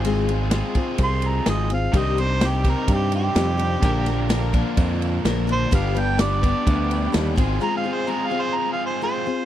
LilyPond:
<<
  \new Staff \with { instrumentName = "Harmonica" } { \time 4/4 \key f \dorian \tempo 4 = 127 r2 c'''8 bes''8 ees''8 f''8 | ees''8 c''8 g'8 bes'8 g'8 g'4.~ | g'4. r2 c''8 | f''8 g''8 d''2 r4 |
\tuplet 3/2 { bes''8 f''8 c''8 bes''8 f''8 c''8 bes''8 f''8 c''8 } c''4 | }
  \new Staff \with { instrumentName = "Tonewheel organ" } { \time 4/4 \key f \dorian r1 | <ees' c''>1 | <d' f' bes'>1 | <d' g' b'>2.~ <d' g' b'>8 <f' aes' c''>8~ |
<f' aes' c''>1 | }
  \new Staff \with { instrumentName = "Steel-string acoustic guitar" } { \time 4/4 \key f \dorian <aes c' f' aes'>8 <c' f' aes'>8 <aes c' f' aes'>8 <c' f' aes'>4. <aes c' f' aes'>8 <c' f' aes'>8 | <c ees g c' d' g'>8 <g c' d' g'>8 <g c' d' g'>8 <g c' g'>4. <g c' d' g'>8 <g c' d' g'>8 | <bes, d f bes d' bes'>8 <f bes d' bes'>8 <f bes d' bes'>8 <f bes d' bes'>4. <f bes d' bes'>8 <f bes d' bes'>8 | <g, d g b d' b'>8 <g b d' b'>8 <g b d' b'>8 <g b d' b'>4. <g b d' b'>8 <c' f' aes'>8 |
<aes c' f' aes'>8 <c' f' aes'>8 <aes c' f' aes'>8 <c' f' aes'>4. <aes c' f' aes'>8 <c' f' aes'>8 | }
  \new Staff \with { instrumentName = "Overdriven electric guitar" } { \time 4/4 \key f \dorian <aes c' f' aes'>4 <aes c' f' aes'>2~ <aes c' f' aes'>8 r8 | <c g c' ees' g'>4. <c g c' ees' g'>2~ <c g c' ees' g'>8 | <bes, d f bes d' bes'>4. <bes, d f bes d' bes'>2~ <bes, d f bes d' bes'>8 | <g, d g b d' g'>4. <g, d g b d' g'>2 <aes c' f' aes'>8~ |
<aes c' f' aes'>4 <aes c' f' aes'>2~ <aes c' f' aes'>8 r8 | }
  \new Staff \with { instrumentName = "Fingered electric bass" } { \clef bass \time 4/4 \key f \dorian aes,,4. r8 c,4 aes,,4 | c,2 g,4 f,4 | bes,,2 f,4 bes,,4 | g,,2 d,4 ees,8 aes,,8 |
r1 | }
  \new DrumStaff \with { instrumentName = "Drums" } \drummode { \time 4/4 cymr8 cymr8 <cymr sn>8 <bd cymr>8 <bd cymr>8 cymr8 <cymr sn>8 cymr8 | <bd cymr>8 <cymr sn>8 <cymr sn>8 <bd cymr sn>8 <bd cymr>8 cymr8 <cymr sn>8 cymr8 | <bd cymr>8 <cymr sn>8 <cymr sn>8 <bd cymr>8 <bd cymr>8 cymr8 <cymr sn>8 cymr8 | <bd cymr>8 cymr8 <cymr sn>8 <bd cymr>8 <bd cymr>8 cymr8 <cymr sn>8 <bd cymr>8 |
r4 r4 r4 r4 | }
>>